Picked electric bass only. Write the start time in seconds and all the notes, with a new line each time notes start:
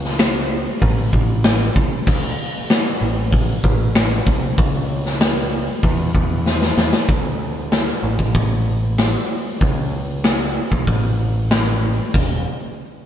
Already playing: C#2
0.82 A1
1.13 A1
1.76 C#2
2.07 D2
3.01 A1
3.64 A1
4.27 C2
4.58 C#2
5.83 E2
6.14 E2
6.77 E2
7.09 D2
8.03 A1
9.61 C#2
10.72 B1
10.87 A1
12.14 E1